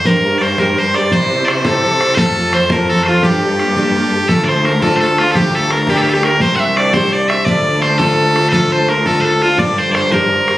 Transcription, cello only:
X:1
M:6/8
L:1/8
Q:3/8=113
K:Gdor
V:1 name="Cello" clef=bass
G,,6 | C,6 | F,,6 | G,,6 |
D,,6 | D,,6 | C,,6 | D,,6- |
D,,6 | G,,6 |]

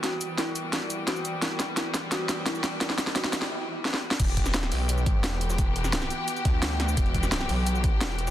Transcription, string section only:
X:1
M:4/4
L:1/8
Q:1/4=173
K:Em
V:1 name="String section"
[E,G,B,F]8- | [E,G,B,F]8- | [E,G,B,F]8 | [E,B,FG]8- |
[E,B,FG]8- | [E,B,FG]8 |]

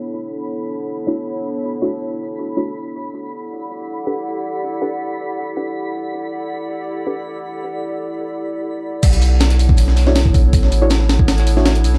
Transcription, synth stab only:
X:1
M:4/4
L:1/16
Q:1/4=160
K:Bm
V:1 name="Synth stab"
z8 z3 [A,DEFc] z4 | z3 [A,DEFc] z6 z [A,DEFc]2 z3 | z8 z3 [DGABf] z4 | z3 [DGABf] z6 z [DGABf]2 z3 |
z8 z3 [DGABf] z4 | z16 | z8 z3 [A,DEFc] z4 | z3 [A,DEFc] z6 z [A,DEFc]2 z3 |]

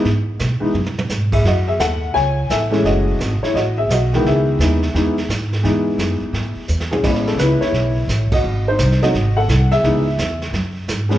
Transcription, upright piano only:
X:1
M:4/4
L:1/8
Q:"Swing" 1/4=172
K:C#m
V:1 name="Upright piano"
z6 z [Ge] | [Fd] [Ge] [Af]2 [cg]2 [Ae]2 | [Fd]3 [Ec] [Fd] [Ge] [Fd]2 | [Ge]6 z2 |
z6 z [CG]- | [CG] [CA] [EB] [Ec]4 [Fd]- | [Fd] [D^B]2 [Fd]2 [Af]2 [Ge]- | [Ge]3 z4 z |]
V:2 name="Upright piano" clef=bass
z3 [E,G,B,D] z4 | z6 z [E,G,A,C]- | [E,G,A,C]2 z4 z [D,E,G,B,]- | [D,E,G,B,]2 [E,G,B,D] z [E,G,B,D] z3 |
[E,G,B,D]4- [E,G,B,D] z3 | [E,G,B,C]4- [E,G,B,C] z3 | z3 [F,A,^B,D] z4 | [E,G,B,D] z6 [^E,G,B,C] |]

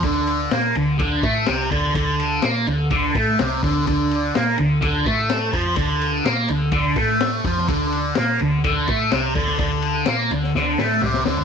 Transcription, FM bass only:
X:1
M:4/4
L:1/8
Q:1/4=126
K:Dm
V:1 name="FM bass" clef=bass
D,,2 B,, D,, D,, A,, C,, D,, | D,,2 B,, D,, D,, A,, C,, D,, | D,,2 B,, D,, D,, A,,2 F,, | D,,2 B,, D,, D,, A,,2 F,, |
D,,2 B,, D,, D,, A,, C,, D,, | D,,2 B,, D,, D,, A,, C,, D,, |]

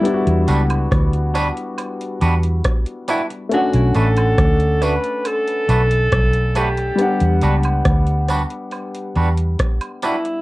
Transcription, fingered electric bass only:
X:1
M:4/4
L:1/16
Q:1/4=69
K:Edor
V:1 name="Fingered electric bass" clef=bass
z E,, C,,2 D,,3 z3 E,,2 z4 | z B,,, A,,,2 D,,3 z3 B,,,2 B,,,4 | z E,, C,,2 D,,3 z3 E,,2 z4 |]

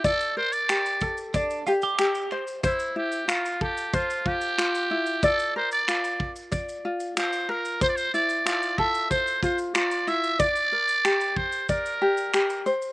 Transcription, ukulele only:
X:1
M:4/4
L:1/8
Q:1/4=93
K:Gdor
V:1 name="Ukulele"
d B G A d G G c | c E F A c F F E | d B F2 d F F B | c E F A c F F E |
d B G2 d G G c |]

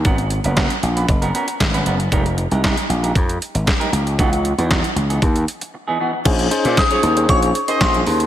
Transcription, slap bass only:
X:1
M:4/4
L:1/16
Q:1/4=116
K:Dblyd
V:1 name="Slap bass" clef=bass
A,,,3 _G,,,2 z B,,,2 G,,,2 z2 A,,,2 G,,,2 | F,,,3 C,,2 z B,,,2 F,,2 z A,,, z2 D,,2 | D,,3 _F,,2 z D,,2 E,,2 z6 | B,,,2 z B,, z2 E,,2 B,,,2 z2 B,,,2 E,,2 |]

